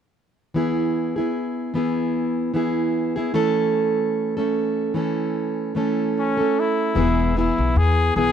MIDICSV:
0, 0, Header, 1, 5, 480
1, 0, Start_track
1, 0, Tempo, 803213
1, 324, Time_signature, 4, 2, 24, 8
1, 4973, End_track
2, 0, Start_track
2, 0, Title_t, "Felt piano"
2, 0, Program_c, 0, 0
2, 4152, Note_on_c, 0, 56, 54
2, 4162, Note_on_c, 0, 64, 52
2, 4173, Note_on_c, 0, 71, 61
2, 4269, Control_c, 0, 64, 127
2, 4973, Note_off_c, 0, 56, 0
2, 4973, Note_off_c, 0, 64, 0
2, 4973, Note_off_c, 0, 71, 0
2, 4973, End_track
3, 0, Start_track
3, 0, Title_t, "Trumpet"
3, 0, Program_c, 1, 56
3, 3701, Note_on_c, 1, 61, 66
3, 3942, Note_on_c, 1, 64, 69
3, 3951, Note_off_c, 1, 61, 0
3, 4413, Note_off_c, 1, 64, 0
3, 4416, Note_on_c, 1, 64, 72
3, 4647, Note_on_c, 1, 68, 96
3, 4656, Note_off_c, 1, 64, 0
3, 4877, Note_off_c, 1, 68, 0
3, 4881, Note_on_c, 1, 68, 83
3, 4973, Note_off_c, 1, 68, 0
3, 4973, End_track
4, 0, Start_track
4, 0, Title_t, "Steel-string acoustic guitar"
4, 0, Program_c, 2, 25
4, 325, Note_on_c, 2, 52, 47
4, 333, Note_on_c, 2, 59, 51
4, 336, Note_on_c, 2, 64, 56
4, 341, Note_on_c, 2, 68, 50
4, 686, Note_off_c, 2, 68, 0
4, 693, Note_on_c, 2, 68, 43
4, 697, Note_off_c, 2, 52, 0
4, 697, Note_off_c, 2, 64, 0
4, 701, Note_off_c, 2, 59, 0
4, 704, Note_on_c, 2, 64, 43
4, 713, Note_on_c, 2, 59, 39
4, 1039, Note_off_c, 2, 59, 0
4, 1039, Note_on_c, 2, 52, 44
4, 1043, Note_off_c, 2, 68, 0
4, 1045, Note_off_c, 2, 64, 0
4, 1046, Note_on_c, 2, 59, 51
4, 1052, Note_on_c, 2, 64, 54
4, 1058, Note_on_c, 2, 68, 48
4, 1513, Note_off_c, 2, 52, 0
4, 1514, Note_off_c, 2, 59, 0
4, 1516, Note_on_c, 2, 52, 54
4, 1521, Note_on_c, 2, 59, 53
4, 1525, Note_off_c, 2, 68, 0
4, 1526, Note_off_c, 2, 64, 0
4, 1528, Note_on_c, 2, 64, 51
4, 1532, Note_on_c, 2, 68, 63
4, 1880, Note_off_c, 2, 68, 0
4, 1888, Note_on_c, 2, 68, 50
4, 1889, Note_off_c, 2, 64, 0
4, 1893, Note_off_c, 2, 52, 0
4, 1896, Note_off_c, 2, 59, 0
4, 1896, Note_on_c, 2, 64, 43
4, 1906, Note_on_c, 2, 59, 38
4, 1995, Note_off_c, 2, 59, 0
4, 1995, Note_on_c, 2, 52, 66
4, 1997, Note_on_c, 2, 57, 68
4, 2000, Note_off_c, 2, 64, 0
4, 2001, Note_off_c, 2, 68, 0
4, 2003, Note_on_c, 2, 61, 74
4, 2005, Note_on_c, 2, 69, 68
4, 2603, Note_off_c, 2, 69, 0
4, 2609, Note_off_c, 2, 61, 0
4, 2611, Note_on_c, 2, 69, 49
4, 2614, Note_off_c, 2, 57, 0
4, 2617, Note_on_c, 2, 61, 44
4, 2626, Note_on_c, 2, 57, 39
4, 2951, Note_off_c, 2, 52, 0
4, 2953, Note_off_c, 2, 57, 0
4, 2953, Note_on_c, 2, 52, 52
4, 2956, Note_off_c, 2, 61, 0
4, 2960, Note_on_c, 2, 57, 46
4, 2962, Note_off_c, 2, 69, 0
4, 2963, Note_on_c, 2, 61, 50
4, 2972, Note_on_c, 2, 69, 55
4, 3433, Note_off_c, 2, 52, 0
4, 3435, Note_off_c, 2, 57, 0
4, 3435, Note_on_c, 2, 52, 47
4, 3440, Note_off_c, 2, 61, 0
4, 3442, Note_on_c, 2, 57, 58
4, 3444, Note_off_c, 2, 69, 0
4, 3447, Note_on_c, 2, 61, 53
4, 3451, Note_on_c, 2, 69, 53
4, 3802, Note_off_c, 2, 69, 0
4, 3809, Note_on_c, 2, 69, 46
4, 3812, Note_off_c, 2, 52, 0
4, 3813, Note_off_c, 2, 61, 0
4, 3815, Note_off_c, 2, 57, 0
4, 3820, Note_on_c, 2, 61, 39
4, 3828, Note_on_c, 2, 57, 35
4, 4153, Note_on_c, 2, 52, 70
4, 4157, Note_off_c, 2, 57, 0
4, 4159, Note_on_c, 2, 59, 60
4, 4161, Note_off_c, 2, 61, 0
4, 4161, Note_off_c, 2, 69, 0
4, 4163, Note_on_c, 2, 64, 68
4, 4166, Note_on_c, 2, 68, 67
4, 4389, Note_off_c, 2, 52, 0
4, 4396, Note_off_c, 2, 59, 0
4, 4396, Note_on_c, 2, 52, 41
4, 4403, Note_on_c, 2, 59, 54
4, 4404, Note_off_c, 2, 64, 0
4, 4405, Note_off_c, 2, 68, 0
4, 4410, Note_on_c, 2, 64, 45
4, 4412, Note_on_c, 2, 68, 54
4, 4873, Note_off_c, 2, 52, 0
4, 4875, Note_off_c, 2, 59, 0
4, 4875, Note_on_c, 2, 52, 49
4, 4882, Note_on_c, 2, 59, 53
4, 4885, Note_off_c, 2, 68, 0
4, 4886, Note_off_c, 2, 64, 0
4, 4889, Note_on_c, 2, 64, 50
4, 4892, Note_on_c, 2, 68, 54
4, 4973, Note_off_c, 2, 52, 0
4, 4973, Note_off_c, 2, 59, 0
4, 4973, Note_off_c, 2, 64, 0
4, 4973, Note_off_c, 2, 68, 0
4, 4973, End_track
5, 0, Start_track
5, 0, Title_t, "Upright bass"
5, 0, Program_c, 3, 32
5, 4158, Note_on_c, 3, 28, 87
5, 4466, Note_off_c, 3, 28, 0
5, 4531, Note_on_c, 3, 35, 77
5, 4622, Note_off_c, 3, 35, 0
5, 4637, Note_on_c, 3, 40, 92
5, 4837, Note_off_c, 3, 40, 0
5, 4876, Note_on_c, 3, 35, 90
5, 4973, Note_off_c, 3, 35, 0
5, 4973, End_track
0, 0, End_of_file